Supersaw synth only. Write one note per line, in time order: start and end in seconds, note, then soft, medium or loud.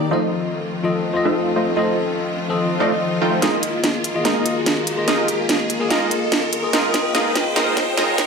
0.11 0.31 A3 medium
0.11 0.31 D#4 medium
0.11 0.31 F4 medium
0.11 0.31 C5 medium
0.11 0.31 D#5 loud
1.25 1.54 A3 medium
1.25 1.54 D#4 medium
1.25 1.54 F4 medium
1.25 1.54 C5 medium
1.25 1.54 F5 medium
1.56 1.74 A3 medium
1.56 1.74 D#4 medium
1.56 1.74 F4 medium
1.56 1.74 C5 medium
1.56 1.74 D#5 medium
1.77 1.96 A3 medium
1.77 1.96 D#4 medium
1.77 1.96 F4 medium
1.77 1.96 C5 medium
1.77 1.96 D#5 loud
2.80 2.92 A3 medium
2.80 2.93 D#4 medium
2.80 2.92 F4 medium
2.80 2.92 C5 medium
2.80 2.92 D5 loud
3.22 3.40 A3 medium
3.22 3.40 D#4 medium
3.22 3.40 F4 medium
3.22 3.40 C5 medium
3.22 3.40 G5 loud
3.42 3.62 G#3 medium
3.42 3.62 D#4 medium
3.42 3.62 F4 medium
3.42 3.62 A#4 medium
3.42 3.62 D#5 medium
4.25 4.44 G#3 medium
4.25 4.44 D#4 medium
4.25 4.44 F4 medium
4.25 4.44 A#4 medium
4.25 4.44 D#5 medium
5.08 5.27 G#3 medium
5.08 5.27 D#4 medium
5.08 5.27 F4 medium
5.08 5.27 A#4 medium
5.08 5.27 D#5 medium
5.90 6.10 G#3 medium
5.90 6.10 D#4 medium
5.90 6.10 F4 medium
5.90 6.10 A#4 medium
5.90 6.10 D#5 loud
6.73 6.93 G#3 medium
6.73 6.93 D#4 medium
6.73 6.93 F4 medium
6.73 6.93 A#4 medium
6.73 6.93 D#5 loud
7.14 7.34 G#3 medium
7.14 7.34 D#4 medium
7.14 7.34 F4 medium
7.14 7.34 A#4 medium
7.14 7.34 D#5 loud
7.56 7.75 G#3 medium
7.56 7.75 D#4 medium
7.56 7.75 F4 medium
7.56 7.75 A#4 medium
7.56 7.75 D#5 loud
7.97 8.17 G#3 medium
7.97 8.17 D#4 medium
7.97 8.17 F4 medium
7.97 8.17 A#4 medium
7.97 8.17 D#5 loud